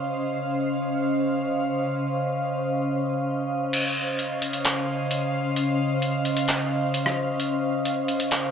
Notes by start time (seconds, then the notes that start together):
Already playing: C#3 C#4 C5 D#5 F5
3.73 C#3 C#4 C5 D#5 F5, closed hi-hat, crash
4.19 closed hi-hat
4.42 closed hi-hat
4.53 closed hi-hat
4.65 clap, closed hi-hat
5.11 closed hi-hat
5.56 closed hi-hat
6.02 closed hi-hat
6.25 closed hi-hat
6.37 closed hi-hat
6.48 clap, closed hi-hat
6.94 closed hi-hat
7.06 cross-stick
7.40 closed hi-hat
7.85 closed hi-hat
8.08 closed hi-hat
8.20 closed hi-hat
8.31 clap, closed hi-hat